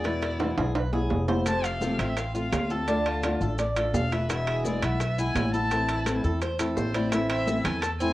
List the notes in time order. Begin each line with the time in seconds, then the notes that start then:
Already playing: E2 D5
0.04 B2 E3 G#3 B3 E4, high bongo, high conga, high timbale
0.22 E4, high bongo, high conga, high timbale
0.40 B2 E3 G#3 B3 E4, high bongo, high conga, high timbale
0.57 B1 G#3 B3 E4 G#4, high conga, high timbale
0.75 B4, muted nylon-string guitar stroke, low bongo, high conga, high timbale
0.93 G#3 B3 E4 G#4, low bongo, high conga, low timbale
1.10 F1, low bongo, low timbale
1.28 G#3 B3 E4 C5, low bongo, high conga, low timbale
1.46 C3 F3 A3 C4 F4 A5, high bongo, high conga, high timbale, maracas
1.64 A4 F5, high conga, high timbale, maracas
1.81 C3 F3 A3 C4 F4, high bongo, high conga, low timbale, maracas
1.99 A1 A3 C4 F4 E5, high conga, high timbale, maracas
2.04 F5
2.09 E5
2.17 F5, muted nylon-string guitar stroke, high bongo, high timbale, maracas
2.34 A3 C4 F4 F5, high conga, maracas
2.52 D2, high bongo, low bongo, high conga, high timbale, low timbale, maracas
2.70 A3 C4 F4 A4 A5, maracas
2.88 D3 A3 D4 F4, high bongo, high conga, high timbale, maracas
3.05 F4, high bongo, high conga, high timbale
3.23 D3 A3 D4 F4, high bongo, high conga, high timbale, low timbale, maracas
3.41 A1 A3 D4 F4 A4, high bongo, high conga, maracas
3.58 D5, muted nylon-string guitar stroke, high bongo, high conga, high timbale, maracas
3.76 A3 D4 F4 A4, high bongo, high conga, high timbale, maracas
3.93 E1 F5, high bongo, low bongo, high conga, low timbale, maracas
4.12 A3 D4 F4 B4 E5, high timbale, maracas
4.29 B2 E3 G#3 B3 E4 E5, high bongo, high conga, high timbale, maracas
4.47 G#4, high conga, high timbale
4.65 B2 E3 G#3 B3 E4 D5, high bongo, high conga, low timbale, maracas
4.82 B1 G#3 B3 E4 E5, high conga, high timbale, maracas
5.00 muted nylon-string guitar stroke, high bongo, high conga, high timbale, maracas
5.18 G#3 B3 E4 G#5, maracas
5.35 A1, high bongo, low bongo, high conga, high timbale, low timbale, maracas
5.53 G#3 B3 E4 A4 A5, high conga, maracas
5.71 E3 A3 C4 E4, high bongo, high conga, high timbale, maracas
5.89 E4, high bongo, high conga, high timbale, maracas
6.06 E3 A3 C4 E4, high bongo, high conga, high timbale, low timbale, maracas
6.24 E2 A3 C4 E4 A4, high bongo, high conga, maracas
6.42 C5, muted nylon-string guitar stroke, high bongo, high conga, high timbale, maracas
6.59 A3 C4 E4 A4, high bongo, high conga, high timbale, maracas
6.76 A1 C5, high bongo, low bongo, high conga, low timbale, maracas
6.94 A3 C4 E4 C5 D5, high conga, high timbale, maracas
7.12 E3 A3 C4 E4 E5, high bongo, high conga, high timbale, maracas
7.30 C4 E5, high conga, high timbale
7.47 E3 A3 C4 E4, high bongo, high conga, low timbale, maracas
7.64 E2 A4 G#5, high conga, low conga, high timbale, maracas
7.82 A5, muted nylon-string guitar stroke, high bongo, high conga, high timbale, maracas
8.00 A3 C4 E4 G#5, high conga, maracas